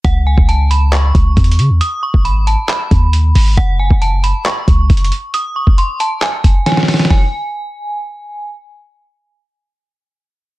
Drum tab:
HH |x-----------------------x-----------x-----------x-----------x-----------x---x---x---x-----------|x-----------------------x-----------x-----------x-----------x-----------x-----------o-----------|x-----------------------x-----------x-----------x-----------x-----------x---x---x---x-----------|x-----------------------x-----------x-----------x-----------x-----------x-----------o-----------|
CP |------------------------------------------------x-----------------------------------------------|------------------------------------------------x-----------------------------------------------|------------------------------------------------x-----------------------------------------------|------------------------------------------------x-----------------------------------------------|
SD |------------------------------------------------------------------------------------------------|------------------------------------------------------------------------------------------------|------------------------------------------------------------------------------------------------|------------------------------------------------------------------------o--o--o--o--o--o--o--o--|
BD |o-----------------o-----------------------------------------o-----------o-----------------------|------------------o-----------------------------------------o-----------------------------------|o-----------------o-----------------------------------------o-----------o-----------------------|------------------o-----------------------------------------o-----------------------------------|

HH |------------------------------------------------------------------------------------------------|------------------------------------------------------------------------------------------------|
CP |------------------------------------------------------------------------------------------------|------------------------------------------------------------------------------------------------|
SD |o-----------------------------------------------------------------------------------------------|------------------------------------------------------------------------------------------------|
BD |o-----------------------------------------------------------------------------------------------|------------------------------------------------------------------------------------------------|